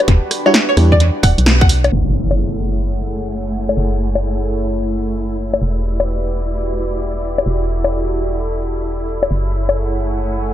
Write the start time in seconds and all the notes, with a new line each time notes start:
Already playing: D4 F#4 G4 B4
0.08 E1, kick, closed hi-hat
0.31 cross-stick, open hi-hat
0.46 G3 D4 E4 F#4 C#5, high bongo
0.54 snare, closed hi-hat
0.69 C#5
0.77 E2 G3 D4 E4 G4, cross-stick, open hi-hat
0.92 D5, kick, cross-stick
1.00 closed hi-hat
1.23 D1 F#5, kick, open hi-hat
1.38 B1, closed hi-hat
1.46 snare, open hi-hat
1.61 F#5, kick, closed hi-hat
1.69 open hi-hat
1.84 closed hi-hat, high bongo
1.92 F#1 E4 G#4 A4 C#5, impact, shaker
2.04 A3, shaker
2.16 shaker
2.31 high bongo, shaker
2.39 F#5, shaker
2.62 shaker
2.77 G#5, shaker
2.85 shaker
3.08 shaker
3.23 shaker
3.31 shaker
3.54 shaker
3.69 high bongo, shaker
3.77 F#1, shaker
3.92 shaker
4.00 shaker
4.15 high bongo, shaker
4.23 shaker
4.38 shaker
4.46 shaker
4.61 shaker
4.70 shaker
4.84 shaker
4.92 shaker
5.08 shaker
5.15 shaker
5.30 shaker
5.38 shaker
5.54 high bongo, shaker
5.62 E1 F#4 G4 B4 D5, shaker
5.77 shaker
5.85 D5, shaker
6.00 high bongo, shaker
6.08 shaker
6.31 shaker
6.46 shaker
6.54 shaker
6.77 shaker
6.92 shaker
7.00 shaker
7.23 shaker
7.38 high bongo, shaker
7.46 E1 A4, shaker
7.61 shaker
7.69 shaker
7.84 high bongo, shaker
7.92 shaker
8.07 shaker
8.16 shaker
8.31 shaker
8.39 shaker
8.54 shaker
8.61 shaker
8.77 shaker
8.85 shaker
9.00 shaker
9.08 shaker
9.23 high bongo, shaker
9.31 F#1 E4 G#4 A4 C#5, shaker
9.45 A3, shaker
9.54 shaker
9.69 high bongo, shaker
9.77 shaker
9.83 F#5
10.00 shaker
10.06 G#5
10.15 shaker
10.23 shaker
10.46 shaker